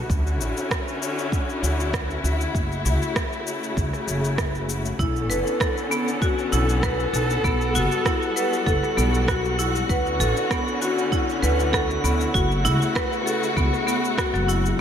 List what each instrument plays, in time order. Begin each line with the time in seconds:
Already playing: string section F#4
0.09 upright bass D2, string section D3 C#4 E4, kick, cabasa
0.27 cabasa
0.40 upright bass A1, cabasa
0.57 cabasa
0.71 kick, cross-stick, cabasa
0.88 cabasa
1.03 cabasa
1.19 cabasa
1.32 kick, cabasa
1.50 cabasa
1.63 upright bass D2, cabasa
1.80 cabasa
1.93 kick, cross-stick, cabasa
2.11 cabasa
2.24 upright bass D2, cabasa
2.41 cabasa
2.54 upright bass F#1, string section C#3 A3, kick, cabasa
2.72 cabasa
2.85 upright bass C#2, cabasa
3.02 cabasa
3.16 kick, cross-stick, cabasa
3.33 cabasa
3.47 cabasa
3.63 cabasa
3.77 upright bass C#2, kick, cabasa
3.93 cross-stick, cabasa
4.08 upright bass F#1, cabasa
4.25 cabasa
4.38 kick, cross-stick, cabasa
4.55 cabasa
4.69 cabasa
4.85 cabasa
4.99 upright bass B1, string section D3 B3 C#4 A4, marimba E4, synth texture F#4 F#5, kick, cabasa
5.16 cabasa
5.30 upright bass F#1, marimba B4, cabasa
5.47 cabasa
5.60 marimba A4, kick, cross-stick, cabasa
5.78 cabasa
5.91 marimba B3, cabasa
6.08 cabasa
6.22 marimba F#4, kick, cabasa
6.39 cabasa
6.52 upright bass B1, marimba E4, cabasa
6.69 cabasa
6.83 marimba B4, kick, cross-stick, cabasa
7.00 cabasa
7.13 upright bass B1, marimba A4, cabasa
7.30 cabasa
7.44 upright bass B1, string section G3 F#4, marimba B3, kick, cabasa
7.61 cabasa
7.75 upright bass F#1, marimba F#4, cabasa
7.92 cabasa
8.05 marimba E4, kick, cross-stick, cabasa
8.23 cabasa
8.36 marimba B4, cabasa
8.53 cabasa
8.66 upright bass F#1, marimba A4, kick, cabasa
8.83 cross-stick, cabasa
8.97 upright bass B1, marimba B3, cabasa
9.15 cabasa
9.28 marimba F#4, kick, cross-stick, cabasa
9.45 cabasa
9.59 marimba E4, cabasa
9.75 cabasa
9.89 upright bass D2, string section D3 C#4 E4, marimba B4, kick, cabasa
10.06 cabasa
10.20 upright bass A1, marimba A4, cabasa
10.37 cabasa
10.51 marimba B3, kick, cross-stick, cabasa
10.68 cabasa
10.82 marimba F#4, cabasa
10.98 cabasa
11.12 marimba E4, kick, cabasa
11.29 cabasa
11.43 upright bass D2, marimba B4, cabasa
11.60 cabasa
11.73 marimba A4, kick, cross-stick, cabasa
11.91 cabasa
12.04 upright bass D2, marimba B3, cabasa
12.21 cabasa
12.34 upright bass F#1, string section C#3 A3 F#4, marimba F#4, kick, cabasa
12.52 cabasa
12.65 upright bass C#2, marimba E4, cabasa
12.82 cabasa
12.95 marimba B4, kick, cross-stick, cabasa
13.13 cabasa
13.26 marimba A4, cabasa
13.43 cabasa
13.57 upright bass C#2, marimba B3, kick, cabasa
13.73 cross-stick, cabasa
13.87 marimba B3, cabasa
14.05 cabasa
14.18 marimba F#4, kick, cross-stick, cabasa
14.34 upright bass F#1, marimba F#3, cabasa
14.48 marimba E4, cabasa
14.66 cabasa